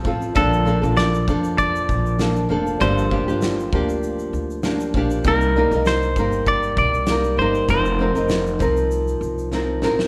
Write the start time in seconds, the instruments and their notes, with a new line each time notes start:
0.04 upright bass A1, nylon-string guitar F3 C4 F4 A4, kick
0.22 shaker
0.35 upright bass A#1, nylon-string guitar A#2 D3 F3 A#3 D4 A4, clean electric guitar A4, kick, shaker
0.53 shaker
0.65 nylon-string guitar F3 A#3 D4 A4, shaker
0.82 upright bass A#1, nylon-string guitar F3 A#3 D4 A4, shaker
0.97 clean electric guitar D5, snare, shaker
1.14 shaker
1.28 upright bass F2, nylon-string guitar F3 A#3 D4 A4, kick, shaker
1.44 shaker
1.58 clean electric guitar D5, kick, shaker
1.75 shaker
1.89 upright bass A#1, kick, shaker
2.06 shaker
2.18 nylon-string guitar F3 A#3 D4 A4, snare, shaker
2.36 shaker
2.49 upright bass F1, nylon-string guitar F3 A#3 D4 A4
2.67 shaker
2.80 upright bass G1, nylon-string guitar G2 D3 F3 A#3 D4 G4, clean electric guitar C5, kick, shaker
2.98 shaker
3.10 nylon-string guitar F3 A#3 D4 G4, kick
3.28 upright bass G1, nylon-string guitar F3 A#3 D4 G4, shaker
3.41 snare, shaker
3.60 shaker
3.72 upright bass D2, nylon-string guitar F3 A#3 D4 G4, kick
3.89 shaker
4.03 shaker
4.19 shaker
4.33 upright bass D2, shaker
4.50 shaker
4.63 nylon-string guitar F3 A#3 D4 G4, snare, shaker
4.80 shaker
4.94 upright bass A#1, nylon-string guitar F3 A#3 D4 G4, kick
5.10 shaker
5.24 upright bass C2, nylon-string guitar C3 G3 A#3 D#4 A#4, clean electric guitar A#4, kick, shaker
5.41 shaker
5.56 nylon-string guitar G3 A#3 D#4 A#4
5.71 upright bass C2, nylon-string guitar A#3 D#4 A#4, shaker
5.85 clean electric guitar C5, snare, shaker
6.03 shaker
6.16 upright bass G1, nylon-string guitar G3 A#3 D#4 A#4, kick, shaker
6.32 shaker
6.46 clean electric guitar D5, kick, shaker
6.63 shaker
6.77 upright bass C2, clean electric guitar D5, kick, shaker
6.94 shaker
7.07 nylon-string guitar G3 A#3 D#4, snare, shaker
7.11 nylon-string guitar A#4
7.24 shaker
7.37 upright bass G1, nylon-string guitar G3 A#3, clean electric guitar C5
7.41 nylon-string guitar D#4 A#4
7.54 shaker
7.68 upright bass F1, nylon-string guitar F3 C4 D#4 A#4, clean electric guitar C5, kick, shaker
7.85 shaker
7.99 nylon-string guitar F3 C4 D#4 A#4
8.15 upright bass F1, nylon-string guitar C4 D#4 A#4, shaker
8.29 snare, shaker
8.47 shaker
8.59 upright bass C2, nylon-string guitar F3 C4 D#4 A#4, kick, shaker
8.77 shaker
8.91 shaker
9.08 shaker
9.21 upright bass C2, shaker
9.38 shaker
9.52 nylon-string guitar F3 C4 D#4 A#4, snare
9.82 upright bass A1, nylon-string guitar F3 C4 D#4 A#4, snare
9.99 snare